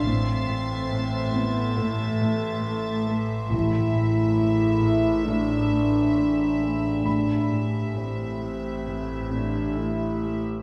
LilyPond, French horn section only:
\new Staff \with { instrumentName = "French horn section" } { \time 4/4 \key a \minor \tempo 4 = 68 c'4. b8 a2 | e'2 d'2 | d'4 c'4. d'8 e'4 | }